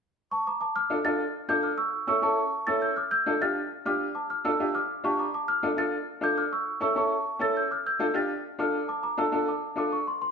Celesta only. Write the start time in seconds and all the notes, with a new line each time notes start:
0.31 A5 C#6
0.47 A#5 D6
0.61 A5 D6
0.76 D6 F6
1.05 F6 A6
1.49 D6 G6
1.63 D6 F6
1.78 C#6 E6
2.08 C#6 E6
2.23 A5 C#6
2.67 E6 A6
2.82 E6 G6
2.96 D6 F6
3.11 E6 G6
3.42 F6 A6
3.86 D6 F6
4.15 A5 D6
4.30 D6 F6
4.45 A5 E6
4.75 D6 F6
5.05 A5 C#6
5.19 A#5 D6
5.34 A5 D6
5.48 D6 F6
5.78 F6 A6
6.24 D6 G6
6.38 D6 F6
6.52 C#6 E6
6.82 C#6 E6
6.97 A5 C#6
7.41 E6 A6
7.57 E6 G6
7.71 D6 F6
7.86 E6 G6
8.15 F6 A6
8.59 D6 F6
8.88 A5 D6
9.03 A#5 D6
9.18 A5 E6
9.48 A5 D6
9.78 D6
9.93 C#6
10.07 C6
10.22 C6